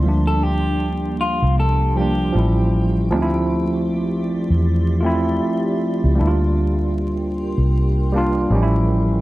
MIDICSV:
0, 0, Header, 1, 5, 480
1, 0, Start_track
1, 0, Key_signature, -1, "minor"
1, 0, Tempo, 769231
1, 26, Time_signature, 4, 2, 24, 8
1, 5748, End_track
2, 0, Start_track
2, 0, Title_t, "Ambient pad"
2, 0, Program_c, 0, 92
2, 0, Note_on_c, 0, 84, 71
2, 22, Note_on_c, 0, 58, 66
2, 23, Note_on_c, 0, 79, 64
2, 24, Note_on_c, 0, 67, 72
2, 1441, Note_off_c, 0, 84, 0
2, 1449, Note_off_c, 0, 58, 0
2, 1925, Note_off_c, 0, 79, 0
2, 1945, Note_on_c, 0, 74, 65
2, 1945, Note_on_c, 0, 84, 81
2, 1946, Note_on_c, 0, 76, 64
2, 3846, Note_off_c, 0, 74, 0
2, 3846, Note_off_c, 0, 84, 0
2, 3847, Note_off_c, 0, 76, 0
2, 3865, Note_on_c, 0, 70, 67
2, 3866, Note_on_c, 0, 84, 76
2, 3867, Note_on_c, 0, 79, 66
2, 5280, Note_off_c, 0, 67, 0
2, 5291, Note_off_c, 0, 70, 0
2, 5291, Note_off_c, 0, 84, 0
2, 5309, Note_on_c, 0, 67, 69
2, 5748, Note_off_c, 0, 67, 0
2, 5748, Note_off_c, 0, 79, 0
2, 5748, End_track
3, 0, Start_track
3, 0, Title_t, "Clean electric guitar"
3, 0, Program_c, 1, 27
3, 171, Note_on_c, 1, 69, 69
3, 270, Note_off_c, 1, 69, 0
3, 270, Note_on_c, 1, 67, 69
3, 723, Note_off_c, 1, 67, 0
3, 753, Note_on_c, 1, 65, 73
3, 966, Note_off_c, 1, 65, 0
3, 997, Note_on_c, 1, 69, 78
3, 1229, Note_off_c, 1, 69, 0
3, 1229, Note_on_c, 1, 67, 67
3, 1922, Note_off_c, 1, 67, 0
3, 5748, End_track
4, 0, Start_track
4, 0, Title_t, "Tine electric piano"
4, 0, Program_c, 2, 4
4, 0, Control_c, 2, 64, 127
4, 19, Note_on_c, 2, 53, 69
4, 31, Note_on_c, 2, 55, 64
4, 35, Control_c, 2, 64, 0
4, 40, Note_on_c, 2, 58, 61
4, 53, Note_on_c, 2, 62, 75
4, 148, Control_c, 2, 64, 127
4, 928, Note_off_c, 2, 53, 0
4, 933, Note_off_c, 2, 55, 0
4, 938, Note_off_c, 2, 58, 0
4, 945, Note_off_c, 2, 62, 0
4, 1220, Note_on_c, 2, 53, 65
4, 1232, Note_on_c, 2, 55, 65
4, 1244, Note_on_c, 2, 58, 64
4, 1253, Note_on_c, 2, 62, 74
4, 1444, Note_off_c, 2, 53, 0
4, 1451, Note_on_c, 2, 53, 74
4, 1456, Note_off_c, 2, 55, 0
4, 1463, Note_on_c, 2, 55, 67
4, 1474, Note_on_c, 2, 61, 65
4, 1475, Note_off_c, 2, 58, 0
4, 1475, Control_c, 2, 64, 0
4, 1480, Note_off_c, 2, 62, 0
4, 1486, Note_on_c, 2, 64, 76
4, 1599, Control_c, 2, 64, 127
4, 1911, Note_off_c, 2, 53, 0
4, 1917, Note_off_c, 2, 55, 0
4, 1923, Note_off_c, 2, 61, 0
4, 1929, Note_off_c, 2, 64, 0
4, 1936, Note_on_c, 2, 53, 81
4, 1946, Note_on_c, 2, 57, 70
4, 1955, Control_c, 2, 64, 0
4, 1958, Note_on_c, 2, 60, 74
4, 1969, Note_on_c, 2, 63, 70
4, 2005, Note_off_c, 2, 63, 0
4, 2010, Note_on_c, 2, 64, 93
4, 2045, Control_c, 2, 64, 127
4, 2846, Note_off_c, 2, 53, 0
4, 2851, Note_off_c, 2, 57, 0
4, 2857, Note_off_c, 2, 60, 0
4, 2883, Note_off_c, 2, 64, 0
4, 3123, Note_on_c, 2, 65, 77
4, 3136, Note_on_c, 2, 57, 85
4, 3147, Note_on_c, 2, 60, 81
4, 3159, Note_on_c, 2, 64, 94
4, 3813, Note_off_c, 2, 65, 0
4, 3819, Note_off_c, 2, 57, 0
4, 3825, Note_off_c, 2, 60, 0
4, 3831, Note_off_c, 2, 64, 0
4, 3839, Note_on_c, 2, 55, 85
4, 3852, Note_on_c, 2, 58, 66
4, 3863, Note_on_c, 2, 62, 76
4, 3873, Note_on_c, 2, 64, 66
4, 3874, Control_c, 2, 64, 0
4, 3914, Note_on_c, 2, 65, 82
4, 3917, Note_off_c, 2, 64, 0
4, 3966, Control_c, 2, 64, 127
4, 4758, Note_off_c, 2, 55, 0
4, 4764, Note_off_c, 2, 58, 0
4, 4770, Note_off_c, 2, 62, 0
4, 4795, Note_off_c, 2, 65, 0
4, 5068, Note_on_c, 2, 55, 82
4, 5079, Note_on_c, 2, 58, 76
4, 5091, Note_on_c, 2, 62, 83
4, 5102, Note_on_c, 2, 65, 100
4, 5306, Note_on_c, 2, 53, 80
4, 5307, Note_off_c, 2, 55, 0
4, 5312, Note_off_c, 2, 58, 0
4, 5315, Control_c, 2, 64, 0
4, 5317, Note_on_c, 2, 55, 87
4, 5318, Note_off_c, 2, 62, 0
4, 5324, Note_off_c, 2, 65, 0
4, 5329, Note_on_c, 2, 61, 87
4, 5339, Note_on_c, 2, 63, 72
4, 5370, Note_off_c, 2, 63, 0
4, 5381, Note_on_c, 2, 64, 99
4, 5430, Control_c, 2, 64, 127
4, 5748, Note_off_c, 2, 53, 0
4, 5748, Note_off_c, 2, 55, 0
4, 5748, Note_off_c, 2, 61, 0
4, 5748, Note_off_c, 2, 64, 0
4, 5748, End_track
5, 0, Start_track
5, 0, Title_t, "Fingered electric bass"
5, 0, Program_c, 3, 33
5, 25, Note_on_c, 3, 38, 86
5, 861, Note_off_c, 3, 38, 0
5, 888, Note_on_c, 3, 36, 87
5, 1442, Note_off_c, 3, 36, 0
5, 1466, Note_on_c, 3, 33, 99
5, 1946, Note_off_c, 3, 33, 0
5, 1946, Note_on_c, 3, 38, 90
5, 2782, Note_off_c, 3, 38, 0
5, 2809, Note_on_c, 3, 40, 83
5, 3362, Note_off_c, 3, 40, 0
5, 3767, Note_on_c, 3, 37, 82
5, 3851, Note_off_c, 3, 37, 0
5, 3869, Note_on_c, 3, 38, 95
5, 4703, Note_off_c, 3, 38, 0
5, 4727, Note_on_c, 3, 36, 77
5, 5281, Note_off_c, 3, 36, 0
5, 5306, Note_on_c, 3, 33, 101
5, 5748, Note_off_c, 3, 33, 0
5, 5748, End_track
0, 0, End_of_file